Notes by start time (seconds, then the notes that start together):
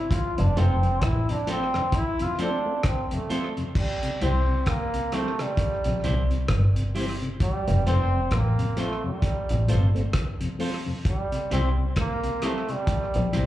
Already playing: E4
0.11 F4, kick, closed hi-hat
0.37 F1 F2 C3 D4, closed hi-hat
0.56 F1 F3 A3 C4 F4 A4 C5, closed hi-hat
0.83 F2 C3, closed hi-hat
1.02 A1 E4, kick, cross-stick, closed hi-hat
1.28 F2 C3 D4, closed hi-hat
1.47 F3 A3 C4 F4 A4 C5, closed hi-hat
1.74 F2 C3, cross-stick
1.92 E4, kick, closed hi-hat
2.19 F2 C3 F4, closed hi-hat
2.38 F3 A3 C4 D4 F4 A4 C5, closed hi-hat
2.66 A3 C4
2.83 C4, kick, cross-stick, closed hi-hat
3.05 C4
3.11 F2 C3 A3, muted clean electric guitar stroke, closed hi-hat
3.30 F3 A3 C4 F4 A4 C5, closed hi-hat
3.57 F2 C3, closed hi-hat
3.75 G3, kick, crash
4.03 C3, closed hi-hat
4.21 C2 E3 G3 C4 E4 G4 C5, closed hi-hat
4.48 C3
4.66 A#3, kick, cross-stick, closed hi-hat
4.94 C3, closed hi-hat
5.12 E3 G3 A3 C4 E4 G4 C5, cross-stick, closed hi-hat
5.39 C3 G3, muted clean electric guitar stroke, cross-stick, closed hi-hat
5.57 kick, closed hi-hat
5.84 A#1 C3, closed hi-hat
6.03 C2 E3 G3 C4 E4 G4 C5, closed hi-hat
6.31 C3, closed hi-hat
6.48 G1, kick, cross-stick, closed hi-hat
6.76 C3, closed hi-hat
6.95 E3 G3 C4 E4 G4 C5, open hi-hat
7.22 C3, closed hi-hat
7.40 G3, kick, closed hi-hat
7.67 F1 F2 C3, closed hi-hat
7.86 F1 F3 A3 C4 F4 A4 C5, closed hi-hat
8.13 F2 C3
8.31 A1 A#3, kick, cross-stick, closed hi-hat
8.58 F2 C3, closed hi-hat
8.77 F3 A3 C4 F4 A4 C5, closed hi-hat
9.04 F2 C3 G3, muted clean electric guitar stroke
9.22 kick, closed hi-hat
9.49 A1 F2 C3, closed hi-hat
9.68 G1 F3 A3 C4 F4 A4 C5, closed hi-hat
9.95 A3 C4, muted clean electric guitar stroke, closed hi-hat
10.13 kick, cross-stick, closed hi-hat
10.41 F2 C3, closed hi-hat
10.59 F3 A3 C4 F4 A4 C5, open hi-hat
10.86 F2 C3, muted clean electric guitar stroke
11.05 G3, kick, closed hi-hat
11.32 C3, closed hi-hat
11.51 C2 E3 G3 C4 E4 G4 C5, closed hi-hat
11.78 C3
11.96 A#3, kick, cross-stick, closed hi-hat
12.23 C3, closed hi-hat
12.42 E3 G3 A3 C4 E4 G4 C5, cross-stick, closed hi-hat
12.68 C3, muted clean electric guitar stroke, closed hi-hat
12.73 G3
12.87 kick, closed hi-hat
13.14 A#1 C3, closed hi-hat
13.33 C2 E3 G3 C4 E4 G4 C5, closed hi-hat